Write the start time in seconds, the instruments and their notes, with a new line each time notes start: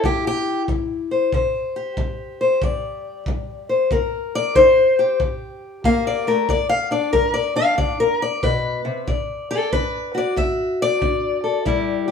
Already playing: steel-string acoustic guitar E4
0.04 steel-string acoustic guitar G3 G4, kick
0.27 steel-string acoustic guitar G4
0.68 steel-string acoustic guitar G3, kick
1.11 steel-string acoustic guitar C5
1.32 steel-string acoustic guitar C3 C5, kick
1.76 steel-string acoustic guitar G4
1.97 steel-string acoustic guitar G3, kick
2.41 steel-string acoustic guitar C5
2.62 steel-string acoustic guitar G3 D5, kick
3.26 steel-string acoustic guitar G3, kick
3.69 steel-string acoustic guitar C5
3.91 steel-string acoustic guitar C4 A#4, kick
4.35 steel-string acoustic guitar D5
4.55 steel-string acoustic guitar D#4 C5, kick
4.99 steel-string acoustic guitar G4
5.20 steel-string acoustic guitar G2, kick
5.84 steel-string acoustic guitar A#3 F5, kick
6.07 steel-string acoustic guitar D5
6.27 steel-string acoustic guitar A3 A#4
6.49 steel-string acoustic guitar G2 D5, kick
6.69 steel-string acoustic guitar F5
6.91 steel-string acoustic guitar D4 D5
7.13 steel-string acoustic guitar G3 A#4, kick
7.34 steel-string acoustic guitar D5
7.56 steel-string acoustic guitar D4 F5
7.78 steel-string acoustic guitar D3 D5, kick
8.00 steel-string acoustic guitar A#4
8.22 steel-string acoustic guitar D5
8.43 steel-string acoustic guitar B2 B4, kick
8.85 steel-string acoustic guitar C3
9.07 steel-string acoustic guitar D3 D5, kick
9.51 steel-string acoustic guitar A4 D5
9.73 steel-string acoustic guitar D4 B4, kick
10.15 steel-string acoustic guitar F#4 D5
10.36 steel-string acoustic guitar D3 E5, kick
10.82 steel-string acoustic guitar D5
11.02 steel-string acoustic guitar D4, kick
11.44 steel-string acoustic guitar A4
11.65 steel-string acoustic guitar C3 G3 E4 G4, kick
12.08 steel-string acoustic guitar G4